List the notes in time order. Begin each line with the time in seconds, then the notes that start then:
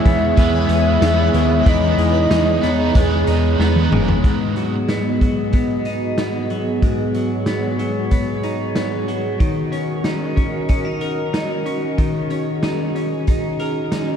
Already playing: E3 G#3 B3 D#4 G#4 B4 C#5 E5
0.04 E2 B3 G#4, kick, closed hi-hat
0.25 B4
0.36 E2 G#3 B3 B4 E5, kick, closed hi-hat
0.69 E2, closed hi-hat
1.00 E2 G#3 B3 B4, snare, closed hi-hat, tambourine
1.34 D#2 G#3 B4, closed hi-hat
1.65 E2 E3 G#3 B3 D#4 B4 D#5, kick, closed hi-hat
1.98 E2 G#3, closed hi-hat
2.31 E2 D#4, snare, closed hi-hat, tambourine
2.62 E2 B3 D#4 B4, closed hi-hat
2.94 E2 G#3 B3 D#4 B4, kick, closed hi-hat
3.27 E2 D#4, closed hi-hat
3.58 E2 G#3 B3 D#4 B4, snare
3.76 high tom
3.92 F#1 G#3, mid tom
4.08 floor tom
4.23 G#2 B3 F#4 G#4 D#5, kick, closed hi-hat
4.56 F#3, closed hi-hat
4.89 B3, snare, closed hi-hat
5.21 F#3, kick, closed hi-hat
5.53 B3, kick, closed hi-hat
5.85 D#4, closed hi-hat
6.18 B3, snare, closed hi-hat
6.50 F#3, closed hi-hat
6.81 G#2 C#5, kick, closed hi-hat
7.14 F#3, closed hi-hat
7.46 B3, snare, closed hi-hat
7.79 F#3, closed hi-hat
8.11 B3, kick, closed hi-hat
8.43 D#4, closed hi-hat
8.76 B3, snare, closed hi-hat
9.08 F#3, closed hi-hat
9.40 D#3 C#4 A#4 D#5, kick, closed hi-hat
9.72 C#4, closed hi-hat
10.04 D#4, snare, closed hi-hat
10.36 C#4, kick, closed hi-hat
10.69 C#4, kick, closed hi-hat
10.85 D#4
11.01 A#4, closed hi-hat
11.33 D#4, snare, closed hi-hat
11.66 C#4, closed hi-hat
11.98 D#3 G#4, kick, closed hi-hat
12.30 C#4, closed hi-hat
12.63 D#4, snare, closed hi-hat
12.95 C#4, closed hi-hat
13.27 D#4, kick, closed hi-hat
13.59 A#4, closed hi-hat
13.92 D#4, snare, closed hi-hat